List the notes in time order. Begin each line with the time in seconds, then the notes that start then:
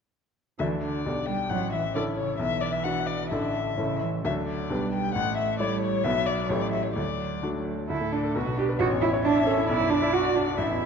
0.59 D2 E3 D4 F#4 D5 E5
0.82 D3 D5
1.06 B1 D4 G4 D5
1.26 G3 G5
1.50 A1 F#3 F#5
1.72 E3 E5
1.95 D3 C#4 E4 A4 D5
2.16 C#3 C#5
2.39 B1 E3 E5
2.61 D5
2.73 E5
2.84 D4 F#4 F#5
3.06 D5
3.31 A1 D3 D4 E4 A4 E5
3.78 A1 C#3 C#4 E4 A4
4.02 E3
4.24 D2 F#3 D4 F#4 A4 E5
4.47 D5
4.70 B1 G3 D4 G4 B4
4.92 G5
5.14 A1 A3 F#5
5.37 E5
5.59 G3 A3 E4 C#5 D5
5.81 C#5
6.03 B1 F#3 B3 B4 E5
6.26 D5
6.49 A1 A3 E4 G4 C#5
6.61 D5
6.71 E5
6.83 C#5
6.94 D2 F#3 D5
7.43 A3 D4 F#4
7.89 D2 E4 A4
8.01 A2
8.12 D4
8.24 A4
8.35 B1 F#4 B4
8.46 B2
8.57 D4 G4
8.69 B4
8.79 A1 F#4 C#5
8.92 E2
9.02 E4
9.13 C#5
9.24 D4 E5 A5
9.36 E5
9.46 C#4 A4
9.58 E4
9.68 B1 E4 D5
9.80 F#2
9.90 D4
10.01 E4 D5
10.12 F#4 F#5
10.25 D5
10.35 D4 F#4
10.47 D4
10.58 A1 E4 E5
10.70 E2
10.82 E4